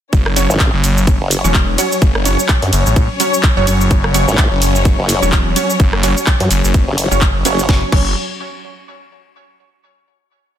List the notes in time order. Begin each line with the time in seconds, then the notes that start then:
0.13 F#1 F#3 C#4 C#5, kick, ride, cabasa
0.26 cross-stick
0.36 F#3 C#4 C#5, open hi-hat, ride, cabasa
0.50 G#1, cabasa
0.60 kick, clap, ride, cabasa
0.73 F#1
0.84 open hi-hat, ride, cabasa
0.98 cabasa
1.07 kick, ride, cabasa
1.21 F#1
1.31 open hi-hat, ride, cabasa
1.44 E1 F#3 C#4 C#5, cabasa
1.54 kick, clap, ride, cabasa
1.78 F#3 C#4 C#5, open hi-hat, ride, cabasa
1.92 cabasa
2.02 F#1, kick, ride, cabasa
2.15 cross-stick
2.25 F#3 C#4 C#5, open hi-hat, ride, cabasa
2.39 cabasa
2.49 kick, clap, ride, cabasa
2.62 F#2, open hi-hat
2.73 F#1, open hi-hat, ride, cabasa
2.86 A1, cabasa
2.96 kick, ride, cabasa
3.20 F#3 C#4 C#5, open hi-hat, ride, cabasa
3.34 cabasa
3.43 kick, clap, ride, cabasa
3.57 F#1 F#3 C#4 C#5
3.67 F#3 C#4 C#5, open hi-hat, ride, cabasa
3.81 cabasa
3.91 kick, ride, cabasa
4.04 cross-stick
4.14 F#3 C#4 C#5, open hi-hat, ride, cabasa
4.28 G#1, cabasa
4.38 kick, clap, ride, cabasa
4.51 F#1
4.62 open hi-hat, ride, cabasa
4.75 cabasa
4.85 kick, ride, cabasa
4.99 F#1
5.09 open hi-hat, ride, cabasa
5.22 E1 F#3 C#4 C#5, cabasa
5.32 kick, clap, ride, cabasa
5.56 F#3 C#4 C#5, open hi-hat, ride, cabasa
5.70 cabasa
5.80 F#1, kick, ride, cabasa
5.93 cross-stick
6.03 F#3 C#4 C#5, open hi-hat, ride, cabasa
6.17 cabasa
6.27 kick, clap, ride, cabasa
6.40 F#2, open hi-hat
6.51 F#1, open hi-hat, ride, cabasa
6.64 F#1, cabasa
6.74 kick, ride, cabasa
6.88 F#1
6.98 open hi-hat, ride, cabasa
7.11 F#1 F#3 C#4 C#5, cabasa
7.21 kick, clap, ride, cabasa
7.45 F#1 F#3 C#4 C#5, open hi-hat, ride, cabasa
7.59 cabasa
7.69 F#1 F#3 C#4 C#5, kick, snare
7.92 F#1 F#3 C#4 C#5, kick, crash